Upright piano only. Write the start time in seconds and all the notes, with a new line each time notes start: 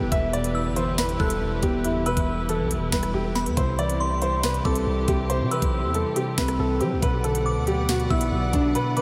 0.12 E5
0.33 D5
0.76 C5
0.98 B4
1.20 A4
1.63 G4
1.85 E4
2.06 B4
2.49 A4
2.92 B4
3.14 G4
3.57 C5
3.79 D5
4.22 C5
4.43 B4
4.65 A4
5.08 G4
5.30 C5
5.51 B4
5.95 A4
6.16 G4
6.38 B4
6.59 A4
6.81 G4
7.02 B4
7.24 A4
7.67 G4
7.89 F#4
8.10 E4
8.53 D4
8.75 B4
8.97 B4